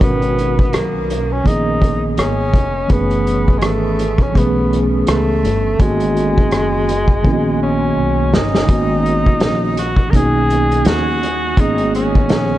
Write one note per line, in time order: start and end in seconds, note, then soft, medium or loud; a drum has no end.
0.00 0.70 G#1 medium
0.00 1.14 B2 medium
0.00 1.13 D#3 medium
0.00 0.76 B3 loud
0.00 1.14 C#4 medium
0.00 1.14 F#4 medium
0.00 1.13 A#4 medium
0.00 kick loud
0.00 closed hi-hat medium
0.22 closed hi-hat soft
0.38 closed hi-hat medium
0.59 kick medium
0.73 1.42 B1 medium
0.73 1.34 A#3 medium
0.73 cross-stick medium
0.73 closed hi-hat medium
1.10 closed hi-hat medium
1.32 1.48 C#4 medium
1.44 2.14 A#1 medium
1.44 2.57 D#3 medium
1.44 2.58 A#3 medium
1.44 2.58 B3 medium
1.44 2.59 C#4 medium
1.44 2.04 D#4 loud
1.44 2.59 G#4 medium
1.44 kick medium
1.44 closed hi-hat medium
1.82 kick medium
1.82 closed hi-hat medium
2.17 2.54 G#1 medium
2.17 2.93 C#4 medium
2.17 cross-stick medium
2.17 closed hi-hat medium
2.53 2.88 F1 medium
2.53 kick medium
2.53 closed hi-hat medium
2.88 3.63 F#1 medium
2.88 4.02 E3 medium
2.88 4.02 A3 medium
2.88 4.02 B3 medium
2.88 4.03 C#4 medium
2.88 4.03 G#4 medium
2.88 kick medium
2.88 closed hi-hat medium
2.92 3.60 B3 loud
3.11 closed hi-hat medium
3.27 closed hi-hat medium
3.48 kick medium
3.58 3.66 G#3 medium
3.58 cross-stick loud
3.58 closed hi-hat medium
3.63 4.31 G#1 medium
3.63 4.24 A3 medium
3.99 closed hi-hat medium
4.18 4.38 C#4 medium
4.18 kick medium
4.32 5.04 B1 medium
4.32 5.46 E3 medium
4.32 4.42 G#3 soft
4.32 5.47 B3 medium
4.32 5.47 C#4 medium
4.32 5.48 G#4 medium
4.32 kick medium
4.37 5.50 A3 medium
4.37 4.83 B3 medium
4.37 closed hi-hat medium
4.73 closed hi-hat medium
5.07 5.42 C#2 medium
5.07 5.82 A3 medium
5.07 cross-stick loud
5.07 closed hi-hat medium
5.44 5.78 G1 medium
5.44 closed hi-hat medium
5.78 6.52 G#1 medium
5.78 6.92 D#3 medium
5.78 7.61 G#3 medium
5.78 6.92 A#3 medium
5.78 6.92 B3 medium
5.78 6.93 C#4 medium
5.78 6.93 F#4 medium
5.78 kick loud
5.78 closed hi-hat medium
6.00 closed hi-hat medium
6.17 closed hi-hat medium
6.38 kick medium
6.51 7.21 F#1 medium
6.51 cross-stick medium
6.51 closed hi-hat medium
6.89 closed hi-hat medium
7.08 kick medium
7.23 7.93 A#1 medium
7.23 8.36 D#3 medium
7.23 8.37 A#3 medium
7.23 8.37 B3 medium
7.23 8.37 C#4 medium
7.23 7.33 E4 medium
7.23 kick medium
7.33 8.41 F#4 medium
7.63 8.36 C#4 medium
7.97 8.34 B1 medium
8.33 8.67 G1 medium
8.33 9.78 D#4 loud
8.33 snare medium
8.55 snare medium
8.67 9.38 G#1 medium
8.67 9.81 D#3 medium
8.67 9.81 A#3 medium
8.67 9.82 B3 medium
8.67 9.82 C#4 medium
8.67 9.82 F#4 medium
8.67 kick loud
8.67 closed hi-hat loud
9.06 closed hi-hat medium
9.26 kick medium
9.40 10.10 A#1 medium
9.40 snare loud
9.40 closed hi-hat medium
9.77 10.11 F#4 medium
9.77 closed hi-hat medium
9.96 kick medium
10.10 10.82 B1 medium
10.10 11.25 D#3 medium
10.10 11.25 A#3 medium
10.10 11.26 B3 medium
10.10 11.26 C#4 medium
10.10 10.17 A#4 medium
10.10 kick medium
10.14 11.27 D#4 medium
10.14 10.89 G#4 loud
10.14 closed hi-hat medium
10.50 closed hi-hat medium
10.71 closed hi-hat medium
10.85 11.54 D#2 medium
10.85 11.62 F#4 loud
10.85 snare loud
10.85 closed hi-hat loud
11.23 closed hi-hat medium
11.57 12.26 G#1 medium
11.57 12.58 D#3 medium
11.57 12.58 A#3 medium
11.57 12.58 B3 medium
11.57 12.58 C#4 medium
11.57 11.94 D#4 loud
11.57 12.58 G#4 medium
11.57 kick loud
11.57 closed hi-hat medium
11.78 closed hi-hat medium
11.95 12.58 C#4 loud
11.95 closed hi-hat medium
12.15 kick medium
12.29 12.58 A#1 medium
12.29 snare loud
12.29 closed hi-hat medium